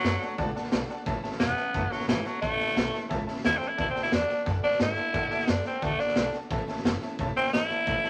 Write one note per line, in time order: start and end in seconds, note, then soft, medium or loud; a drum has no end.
0.00 0.21 F#2 medium
0.00 0.37 F#3 loud
0.04 0.22 D3 medium
0.04 0.22 A3 medium
0.04 0.22 D4 medium
0.04 0.21 F#4 medium
0.04 0.15 D5 medium
0.04 0.15 F#5 medium
0.04 0.15 A5 medium
0.04 snare loud
0.04 hi-hat pedal medium
0.22 0.38 A3 soft
0.22 0.40 D4 medium
0.22 0.39 F#4 medium
0.22 0.32 D5 medium
0.22 0.32 F#5 medium
0.22 0.32 A5 medium
0.22 muted upright bass stroke medium
0.22 snare soft
0.38 0.55 C#2 medium
0.38 0.56 D3 medium
0.38 0.56 A3 medium
0.38 0.55 D4 medium
0.38 0.54 F#4 medium
0.38 0.49 D5 loud
0.38 0.49 F#5 loud
0.38 0.49 A5 loud
0.38 kick loud
0.38 snare soft
0.55 0.71 A3 medium
0.55 0.72 D4 medium
0.55 0.72 F#4 medium
0.55 0.66 D5 medium
0.55 0.66 F#5 medium
0.55 0.66 A5 medium
0.55 muted upright bass stroke medium
0.55 snare soft
0.64 snare soft
0.71 0.88 B1 medium
0.71 0.89 D3 medium
0.71 0.90 A3 loud
0.71 0.89 D4 medium
0.71 0.87 F#4 loud
0.71 0.83 D5 medium
0.71 0.83 F#5 medium
0.71 0.83 A5 loud
0.71 snare loud
0.71 hi-hat pedal medium
0.89 1.06 A3 soft
0.89 1.07 D4 medium
0.89 1.06 F#4 medium
0.89 1.00 D5 medium
0.89 1.00 F#5 medium
0.89 1.00 A5 loud
0.89 muted upright bass stroke medium
0.89 snare soft
1.06 1.23 A1 medium
1.06 1.23 A2 medium
1.06 1.24 E3 medium
1.06 1.24 A3 medium
1.06 1.24 C#4 medium
1.06 1.21 E4 medium
1.06 1.17 C#5 loud
1.06 1.17 E5 medium
1.06 1.17 A5 loud
1.06 kick loud
1.06 snare soft
1.23 1.40 A3 medium
1.23 1.40 C#4 soft
1.23 1.40 E4 medium
1.23 1.34 C#5 medium
1.23 1.34 E5 medium
1.23 1.34 A5 loud
1.23 muted upright bass stroke medium
1.23 snare soft
1.32 snare soft
1.40 1.57 E1 medium
1.40 1.57 A2 medium
1.40 1.58 E3 medium
1.40 1.58 A3 medium
1.40 1.93 B3 loud
1.40 1.57 C#4 medium
1.40 1.55 E4 medium
1.40 1.51 C#5 medium
1.40 1.51 E5 medium
1.40 1.51 A5 medium
1.40 snare loud
1.40 hi-hat pedal medium
1.57 1.74 A3 soft
1.57 1.74 C#4 soft
1.57 1.74 E4 soft
1.57 1.67 C#5 medium
1.57 1.68 E5 medium
1.57 1.68 A5 medium
1.57 snare soft
1.73 1.90 F#1 medium
1.73 1.91 E3 medium
1.73 1.92 A3 medium
1.73 1.92 C#4 medium
1.73 1.90 E4 medium
1.73 1.85 C#5 medium
1.73 1.85 E5 medium
1.73 1.85 A5 loud
1.73 kick loud
1.73 snare soft
1.90 2.08 F#3 medium
1.90 2.09 C#4 medium
1.90 2.09 E4 medium
1.90 2.01 C#5 medium
1.90 2.02 E5 medium
1.90 2.02 A5 medium
1.90 muted upright bass stroke medium
1.90 snare soft
1.95 2.08 A3 soft
2.00 snare soft
2.07 2.25 G#1 medium
2.07 2.26 A2 medium
2.07 2.28 E3 medium
2.07 2.26 E3 medium
2.07 2.26 A3 medium
2.07 2.26 C#4 medium
2.07 2.24 E4 medium
2.07 2.19 C#5 medium
2.07 2.19 E5 medium
2.07 2.19 A5 medium
2.07 snare loud
2.07 hi-hat pedal medium
2.25 2.41 F#3 medium
2.25 2.43 A3 soft
2.25 2.43 C#4 soft
2.25 2.43 E4 medium
2.25 2.36 C#5 medium
2.25 2.36 E5 medium
2.25 2.36 A5 medium
2.25 muted upright bass stroke medium
2.25 snare soft
2.42 2.58 A1 medium
2.42 2.60 A2 medium
2.42 2.60 E3 medium
2.42 3.08 A3 loud
2.42 2.60 A3 medium
2.42 2.59 C#4 medium
2.42 2.58 E4 medium
2.42 2.53 C#5 medium
2.42 2.53 E5 medium
2.42 2.53 A5 loud
2.42 kick loud
2.42 snare soft
2.59 2.76 A3 soft
2.59 2.77 C#4 soft
2.59 2.76 E4 medium
2.59 2.70 C#5 medium
2.59 2.70 E5 medium
2.59 2.70 A5 medium
2.59 muted upright bass stroke soft
2.59 snare soft
2.68 snare soft
2.76 2.93 B1 medium
2.76 2.94 A2 medium
2.76 2.94 E3 medium
2.76 2.94 A3 medium
2.76 2.94 C#4 medium
2.76 2.92 E4 medium
2.76 2.87 C#5 medium
2.76 2.87 E5 medium
2.76 2.87 A5 medium
2.76 snare loud
2.76 hi-hat pedal medium
2.93 3.11 A3 medium
2.93 3.12 C#4 soft
2.93 3.11 E4 medium
2.93 3.04 C#5 medium
2.93 3.04 E5 medium
2.93 3.04 A5 medium
2.93 snare soft
3.09 3.27 C#2 medium
3.09 3.28 E3 medium
3.09 3.29 A3 medium
3.09 3.29 C#4 medium
3.09 3.20 C#5 loud
3.09 3.21 E5 loud
3.09 3.21 A5 loud
3.09 kick loud
3.09 snare soft
3.14 3.27 E4 medium
3.26 3.45 C#4 medium
3.26 3.45 E4 medium
3.26 3.37 C#5 medium
3.26 3.38 E5 medium
3.26 3.38 A5 loud
3.26 muted upright bass stroke medium
3.26 snare soft
3.31 3.45 A3 medium
3.36 snare soft
3.44 3.62 D#2 medium
3.44 3.62 A2 medium
3.44 3.62 E3 medium
3.44 3.63 A3 medium
3.44 3.62 C#4 medium
3.44 3.59 E4 loud
3.44 3.61 E4 medium
3.44 3.55 C#5 medium
3.44 3.55 E5 medium
3.44 3.55 A5 medium
3.44 snare loud
3.44 hi-hat pedal medium
3.57 3.70 C4 medium
3.57 3.72 C#5 medium
3.57 3.71 E5 medium
3.61 3.79 A3 soft
3.61 3.80 C#4 medium
3.61 3.79 E4 medium
3.61 3.72 A5 medium
3.61 snare soft
3.68 3.79 E4 medium
3.77 3.95 D2 medium
3.77 3.96 D3 medium
3.77 3.96 A3 medium
3.77 3.96 D4 medium
3.77 3.90 E4 medium
3.77 3.94 F#4 medium
3.77 3.88 D5 medium
3.77 3.89 F#5 medium
3.77 3.89 A5 loud
3.77 kick loud
3.77 snare soft
3.90 4.01 C4 medium
3.95 4.12 A3 soft
3.95 4.12 D4 medium
3.95 4.13 F#4 medium
3.95 4.06 D5 medium
3.95 4.06 F#5 medium
3.95 4.06 A5 medium
3.95 muted upright bass stroke medium
3.95 snare soft
4.03 4.13 E4 medium
4.03 snare soft
4.12 4.29 E2 medium
4.12 4.30 D3 medium
4.12 4.30 A3 medium
4.12 4.30 D4 medium
4.12 4.46 D4 loud
4.12 4.28 F#4 medium
4.12 4.23 D5 medium
4.12 4.23 F#5 medium
4.12 4.23 A5 medium
4.12 snare loud
4.12 hi-hat pedal loud
4.29 4.45 A3 soft
4.29 4.47 D4 soft
4.29 4.47 F#4 medium
4.29 4.40 D5 medium
4.29 4.40 F#5 medium
4.29 4.40 A5 medium
4.29 snare soft
4.46 4.63 F#2 medium
4.46 4.63 D3 medium
4.46 4.64 A3 medium
4.46 4.64 D4 medium
4.46 4.62 F#4 medium
4.46 4.57 D5 medium
4.46 4.57 F#5 medium
4.46 4.57 A5 loud
4.46 kick loud
4.46 snare soft
4.63 4.80 D4 loud
4.63 4.81 D4 medium
4.63 4.81 F#4 medium
4.63 4.74 D5 medium
4.63 4.74 F#5 medium
4.63 4.74 A5 medium
4.63 muted upright bass stroke medium
4.63 snare soft
4.67 4.80 A3 soft
4.71 snare soft
4.80 4.97 G#2 medium
4.80 4.98 D3 medium
4.80 4.98 A3 medium
4.80 4.98 D4 medium
4.80 5.51 E4 loud
4.80 4.96 F#4 medium
4.80 4.91 D5 medium
4.80 4.91 F#5 medium
4.80 4.91 A5 medium
4.80 snare loud
4.80 hi-hat pedal medium
4.97 5.14 A3 soft
4.97 5.15 D4 medium
4.97 5.15 F#4 medium
4.97 5.08 D5 medium
4.97 5.08 F#5 medium
4.97 5.08 A5 medium
4.97 snare soft
5.13 5.31 A2 medium
5.13 5.32 D3 medium
5.13 5.32 A3 medium
5.13 5.32 D4 medium
5.13 5.30 F#4 medium
5.13 5.25 D5 medium
5.13 5.25 F#5 medium
5.13 5.25 A5 loud
5.13 kick loud
5.13 snare soft
5.30 5.48 A3 medium
5.30 5.49 D4 medium
5.30 5.49 F#4 medium
5.30 5.42 D5 medium
5.30 5.42 F#5 medium
5.30 5.42 A5 loud
5.30 muted upright bass stroke medium
5.30 snare soft
5.39 snare soft
5.47 5.65 F#2 medium
5.47 5.66 D3 medium
5.47 5.66 A3 medium
5.47 5.66 D4 medium
5.47 5.64 F#4 medium
5.47 5.59 D5 medium
5.47 5.59 F#5 medium
5.47 5.59 A5 medium
5.47 snare loud
5.47 hi-hat pedal medium
5.65 5.82 A3 soft
5.65 5.86 C4 medium
5.65 5.83 D4 medium
5.65 5.83 F#4 medium
5.65 5.76 D5 medium
5.65 5.76 F#5 medium
5.65 5.76 A5 medium
5.65 muted upright bass stroke medium
5.65 snare soft
5.82 5.99 D2 medium
5.82 6.00 D3 medium
5.82 6.00 A3 medium
5.82 6.01 A3 loud
5.82 6.00 D4 medium
5.82 5.98 F#4 medium
5.82 5.93 D5 loud
5.82 5.93 F#5 medium
5.82 5.93 A5 loud
5.82 kick loud
5.82 snare soft
5.99 6.16 A3 medium
5.99 6.33 D4 loud
5.99 6.17 D4 medium
5.99 6.17 F#4 medium
5.99 6.10 D5 medium
5.99 6.10 F#5 medium
5.99 6.10 A5 medium
5.99 snare soft
6.08 snare soft
6.16 6.32 B1 medium
6.16 6.34 D3 medium
6.16 6.34 A3 medium
6.16 6.34 D4 medium
6.16 6.33 F#4 medium
6.16 6.27 D5 medium
6.16 6.28 F#5 medium
6.16 6.28 A5 medium
6.16 snare loud
6.16 hi-hat pedal medium
6.33 6.52 D4 soft
6.33 6.51 F#4 medium
6.33 6.44 D5 medium
6.33 6.44 F#5 medium
6.33 6.45 A5 medium
6.33 muted upright bass stroke medium
6.33 snare soft
6.37 6.51 A3 medium
6.50 6.67 A1 medium
6.50 6.68 A2 medium
6.50 6.68 E3 medium
6.50 6.69 A3 medium
6.50 6.68 C#4 medium
6.50 6.66 E4 medium
6.50 6.61 C#5 loud
6.50 6.61 E5 medium
6.50 6.61 A5 loud
6.50 kick loud
6.50 snare soft
6.67 6.85 A3 soft
6.67 6.85 C#4 medium
6.67 6.85 E4 medium
6.67 6.79 C#5 medium
6.67 6.78 E5 medium
6.67 6.79 A5 loud
6.67 muted upright bass stroke medium
6.67 snare soft
6.77 snare soft
6.84 7.01 F#1 medium
6.84 7.02 A2 medium
6.84 7.02 E3 medium
6.84 7.03 A3 loud
6.84 7.02 C#4 loud
6.84 7.00 E4 loud
6.84 6.95 C#5 medium
6.84 6.95 E5 medium
6.84 6.95 A5 medium
6.84 snare loud
6.84 hi-hat pedal medium
7.01 7.18 A3 soft
7.01 7.19 C#4 medium
7.01 7.19 E4 medium
7.01 7.13 C#5 medium
7.01 7.12 E5 medium
7.01 7.13 A5 medium
7.01 muted upright bass stroke medium
7.01 snare soft
7.18 7.35 E1 medium
7.18 7.36 E3 medium
7.18 7.36 A3 medium
7.18 7.37 C#4 medium
7.18 7.35 E4 medium
7.18 7.29 C#5 loud
7.18 7.30 E5 loud
7.18 7.30 A5 loud
7.18 kick loud
7.18 snare soft
7.36 7.53 A3 soft
7.36 7.53 C4 loud
7.36 7.54 C#4 medium
7.36 7.53 E4 medium
7.36 7.47 C#5 medium
7.36 7.47 E5 medium
7.36 7.47 A5 medium
7.36 snare soft
7.45 snare soft
7.52 7.68 G#1 medium
7.52 7.70 A2 medium
7.52 7.71 E3 medium
7.52 7.71 A3 medium
7.52 7.71 C#4 medium
7.52 8.10 E4 loud
7.52 7.69 E4 medium
7.52 7.64 C#5 medium
7.52 7.64 E5 medium
7.52 7.64 A5 medium
7.52 snare loud
7.52 hi-hat pedal medium
7.69 7.87 A3 soft
7.69 7.87 C#4 soft
7.69 7.87 E4 medium
7.69 7.80 C#5 medium
7.69 7.80 E5 medium
7.69 7.80 A5 medium
7.69 muted upright bass stroke soft
7.69 snare soft
7.87 8.03 A1 medium
7.87 8.04 A2 medium
7.87 8.04 E3 medium
7.87 8.04 A3 medium
7.87 8.04 C#4 medium
7.87 8.02 E4 medium
7.87 7.97 C#5 medium
7.87 7.97 E5 medium
7.87 7.97 A5 loud
7.87 kick loud
7.87 snare soft
8.03 8.10 A3 medium
8.03 8.10 C#4 medium
8.03 8.10 E4 medium
8.03 8.10 C#5 medium
8.03 8.10 E5 medium
8.03 8.10 A5 loud
8.03 muted upright bass stroke medium
8.03 snare soft